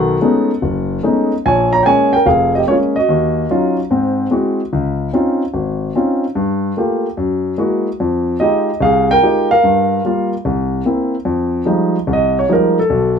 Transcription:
Already playing: B1 D#3 A4 F#5
0.21 G#3 A3 B3 C#4 D#4
0.62 F#1
1.03 G#3 A3 B3 C#4 D#4
1.46 A#1 C#5 G#5
1.73 C#5 A#5
1.83 G#3 A#3 C#4 G5 G#5
1.88 C#5
2.13 A#4 G5
2.26 F1 G#4 F5
2.55 G4 D#5
2.68 G#3 A#3 C#4 F4 C#5
2.96 F#4 D#5
3.09 D#2
3.50 F#3 C#4 D#4 F4
3.90 G#2 C4
4.31 G#3 C4 E4 F#4
4.73 C#2
5.13 C4 C#4 D#4 F4
5.54 G#1
5.96 C4 C#4 D#4 F4
6.35 G2
6.77 A3 A#3 F4 G4
7.17 F#2
7.58 G#3 A#3 E4 F#4
8.00 F2
8.40 G#3 D#4 F4 G4 D#5
8.81 C2 G#4 F5
9.11 A#4 G5
9.23 G#3 D#4 F4 G4
9.51 A#4 F5
9.64 G2
10.05 G3 A#3 F4
10.45 C2
10.85 A#3 C4 E4
11.25 F2
11.65 F3 G3 G#3 D#4
12.07 C2
12.13 D#5
12.39 C#5
12.49 F3 G3 G#3 D#4
12.53 A#4
12.79 A4
12.90 B1

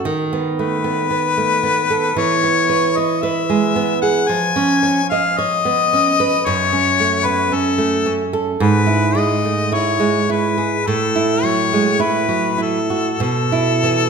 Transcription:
0.05 D#3
0.33 B3
0.59 A3 B4
0.84 B3
1.10 B3
1.37 A3
1.63 B3
1.90 A4
2.16 E3 C#5
2.44 B3
2.69 B4
2.97 C#5 D#5
3.22 B4 E5
3.50 G#3
3.76 B3
4.02 G#4 F#5
4.28 F3 G#5
4.56 C#4
4.83 C#5
5.10 D#5 F5
5.38 C#5 D#5
5.65 B3
5.93 C#4
6.20 B4
6.46 F#2 C#5
6.73 C#4
7.00 A3
7.25 B3 B4
7.52 C#4 A4
7.78 A3
8.06 C#4
8.33 A4
8.60 G#2 B4
8.86 E4
9.15 G#3 D#5
9.45 A3
9.72 E4 C#5
9.99 G#3
10.29 E4 B4
10.58 G#4
10.87 A2 A4
11.16 E4
11.43 F#3 C#5
11.73 G#3
12.00 E4 B4
12.29 F#3
12.58 E4 A4
12.90 F#4
13.20 B2 A4
13.52 E4
13.83 E3

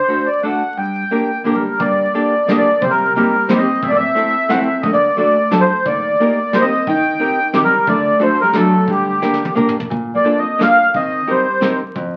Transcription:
Already playing: C5
0.08 A3 D4 F#4 A4
0.26 D5
0.42 A3 D4 F#4 A4 F#5
0.77 G2 G5
1.11 A#3 D4 G4 A#4
1.44 D3 A#3 D4 G4 A#4
1.55 G3 A#4
1.79 G2 A#3 D5, kick, closed hi-hat
2.14 A#3 D4 G4 A4, closed hi-hat
2.47 A#3 D4 G4 A4 D#5, snare
2.58 A#3 D5
2.82 C3 G3 C5, kick, closed hi-hat
2.90 G3 A#4
3.14 G3 A#3 C4 D#4 G4 A#4, closed hi-hat
3.49 G3 A#3 C4 D#4 G4 C5, snare
3.57 C4 D#5
3.82 A2 C4 E5, kick, closed hi-hat
3.89 A#3 D5
3.96 C4 E5
4.15 A3 C4 E4 A4, closed hi-hat
4.49 A3 C4 E4 A4 F#5, snare, closed hi-hat
4.59 C4 E5
4.82 D3 A3 D#5, kick, closed hi-hat
4.93 A#3 D5
5.17 A3 D4 F#4 A4 D5, closed hi-hat
5.51 F#3 A3 D4 F#4 A4, snare, closed hi-hat
5.60 A3 C5
5.85 D#3 A#3 D5, kick, closed hi-hat
6.20 A#3 D#4 G4 A#4, closed hi-hat
6.53 G3 A#3 D#4 G4 A#4 C5, snare, closed hi-hat
6.61 C4 D#5
6.87 D#3 D#4 G5, kick, closed hi-hat
7.19 C4 D#4 G4 A#4, closed hi-hat
7.53 D#3 C4 D#4 G4 A#4, snare, closed hi-hat
7.64 G3 A#4
7.87 D3 A3 D5, kick, closed hi-hat
8.20 A3 D4 F#4 A4 C5, closed hi-hat
8.41 G3 A#4
8.53 F#3 A3 D4 F#4 A4, snare, closed hi-hat
8.87 G2 D3 G4, kick, closed hi-hat
9.22 A#3 D4 G4 A#4, snare
9.34 snare
9.45 high tom
9.55 A#3 D4 G4 A#4, mid tom
9.69 mid tom
9.80 floor tom
9.90 A#2, kick, closed hi-hat
10.15 A#3 D5
10.24 A#3 D4 F4 A4, closed hi-hat
10.38 C4 D#5
10.59 A#3 D4 F4 A4 F5, snare, closed hi-hat
10.94 D#3 C4 D#5, kick, closed hi-hat
11.27 G3 C4 D#4 G4 A#4 C5, closed hi-hat
11.61 C4 D#4 G4 A#4, snare
11.95 F2, kick, closed hi-hat

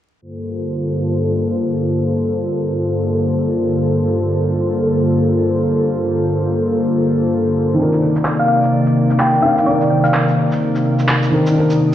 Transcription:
0.22 G2 D3 A#3 F4 A4 C5
7.74 C3 D#3 C4 D5
7.80 D4 A#4
7.92 shaker
8.16 shaker
8.25 clap
8.39 F5
8.48 F5
8.63 shaker
8.86 shaker
9.10 shaker
9.19 G5, clap
9.34 shaker
9.41 D#3 C4 D4 A#4 F5
9.57 shaker
9.63 D#3 C4 D5
9.68 D4 A#4
9.81 shaker
10.04 F5, shaker
10.14 clap
10.28 shaker
10.52 shaker
10.75 shaker
10.99 shaker
11.08 clap
11.22 shaker
11.30 D#3 C4 D4 A#4
11.46 shaker
11.51 D#3 C4
11.56 D4 A#4 D#6
11.70 shaker

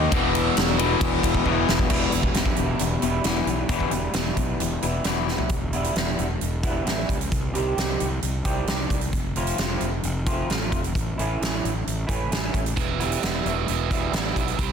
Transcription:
Already playing: A#3 D#4
0.11 E1 E2 B2 E3, kick, ride
0.35 ride
0.57 E1, snare, ride
0.78 E2 B2 E3, ride
1.01 E1, kick, ride
1.23 E1, kick, ride
1.35 kick
1.45 E1 E2 B2 E3, kick
1.69 E1, snare
1.79 kick
1.89 E1 E2 B2 E3 G3 B3 E4, kick, crash
2.11 E1 E2 B2 E3 G3 B3 E4, closed hi-hat
2.23 kick
2.34 E1 E2 B2 E3 G3 B3 E4, snare, closed hi-hat
2.46 kick
2.56 E1 E2 B2, closed hi-hat
2.79 E1 E2 B2, closed hi-hat
3.01 E1 E2 B2 E3 G3 B3 E4, closed hi-hat
3.23 E1 E2 B2 E3 G3 B3 E4, snare, closed hi-hat
3.45 B1 E2 B2 E3 G3 B3 E4, closed hi-hat
3.67 E1 E2 B2 E3 G3 B3 E4, kick, closed hi-hat
3.71 E3
3.80 kick
3.91 E1 E2 B2 E3 G3 B3 E4, closed hi-hat
4.13 E1 E2 B2 E3 G3 B3 E4, snare, closed hi-hat
4.37 B1 E2 B2, kick, closed hi-hat
4.59 E1 E2 B2, closed hi-hat
4.82 E1 E2 B2 E3 G3 B3 E4, closed hi-hat
5.04 E1 E2 B2 E3 G3 B3 E4, snare, closed hi-hat
5.08 E3
5.27 E2 B2 E3 G3 B3 E4, snare
5.38 floor tom
5.49 E1, kick, closed hi-hat
5.73 E3 G3 B3 E4, closed hi-hat
5.84 closed hi-hat
5.96 E1 E3 G3 B3 E4, snare, closed hi-hat
6.19 E1, closed hi-hat
6.41 E1, closed hi-hat
6.63 E3 G3 B3 E4, kick, closed hi-hat
6.84 A1 E3 G3 B3 E4, snare, closed hi-hat
7.09 C#2, kick, closed hi-hat
7.21 closed hi-hat
7.32 C2, kick, closed hi-hat
7.54 C2 D#3 G3 C4 G4, closed hi-hat
7.75 C2 D#3 G3 C4 G4, snare, closed hi-hat
8.00 C2, closed hi-hat
8.22 C2, closed hi-hat
8.45 C2 D#3 G3 C4 G4, kick, closed hi-hat
8.67 C2 D#3 G3 C4 G4, snare, closed hi-hat
8.90 C2, kick, closed hi-hat
9.01 closed hi-hat
9.13 F1, kick, closed hi-hat
9.36 F3 A3 C4 F4, closed hi-hat
9.47 closed hi-hat
9.58 F1 F3 A3 F4, snare, closed hi-hat
9.81 F1, closed hi-hat
10.03 F1, closed hi-hat
10.26 F3 A3 C4 F4, kick, closed hi-hat
10.50 A1 F3 A3 C4 F4, snare, closed hi-hat
10.72 F1, kick, closed hi-hat
10.84 closed hi-hat
10.95 A1, kick, closed hi-hat
11.18 A1 E3 A3 C#4 E4, closed hi-hat
11.40 A1 E3 A3 C#4 E4, snare, closed hi-hat
11.65 A1, closed hi-hat
11.87 A1, closed hi-hat
12.07 A1 E3 A3 C#4 E4, kick, closed hi-hat
12.31 A1 E3 A3 C#4 E4, snare, closed hi-hat
12.54 A1, kick, closed hi-hat
12.66 closed hi-hat
12.77 E1 E2 B2 E3, kick, closed hi-hat
12.99 E2 B2 E3 G3 B3 E4, closed hi-hat
13.12 closed hi-hat
13.22 E1 E2 B2 E3 G3 B3 E4, snare, closed hi-hat
13.45 E1 E2 B2 E3, closed hi-hat
13.68 E1 E2 B2 E3, closed hi-hat
13.89 E2 B2 E3 G3 B3 E4, kick, closed hi-hat
14.12 A1 E2 B2 E3 G3 B3 E4, snare, closed hi-hat
14.36 B1 E2 B2 E3, kick, closed hi-hat
14.48 closed hi-hat
14.57 C2 C3 G3 C4, kick, closed hi-hat

